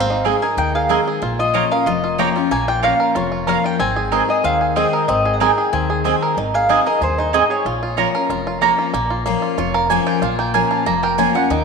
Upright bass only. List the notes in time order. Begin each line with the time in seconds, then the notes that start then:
Already playing: G#1
0.57 D#2
1.22 A#1
1.86 F1
2.51 A#1
3.15 F1
3.80 G#1
4.44 D#2
5.08 G#1
5.73 D#2
6.37 G#1
7.01 D#2
7.65 A#1
8.29 F1
8.94 A#1
9.58 F1
10.22 A#1
10.86 F1
11.50 D#2